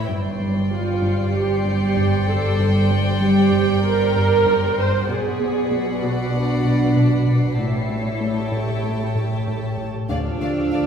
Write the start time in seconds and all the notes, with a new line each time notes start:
Already playing: E4 B4 C#5
0.08 G1 G2 C5 D5 G5 C7
0.12 G4 C5
0.40 G3
0.71 G3 F4 C#7
1.02 G2
1.34 G3 G4
1.65 G2
1.96 G2
2.28 G2 A4
2.59 G2
2.91 G3
3.21 G3 G4
3.52 G2
3.84 G3 A#4
4.16 G2
4.46 G2
4.78 G2 C5
5.07 B1 B2 F#4 G#4 B4 D5 F#5 B6 C7
5.40 B3
5.71 B3
6.03 B2 F#4
6.34 B3 D4
6.65 B2
6.97 B2
7.28 B2
7.58 A1 A2 E4 G4 A4 C#5 G5 A5
7.90 A3
8.10 C#7
8.21 A3
8.52 A2
8.84 A3
9.15 A2
9.48 A2
9.78 A2
10.09 D2 D3 F3 A3 D4 A4 D5 F5 D6 E6 F6, taiko
10.41 D3 A3 D5 F5
10.72 D2 A3 D4 D5 F5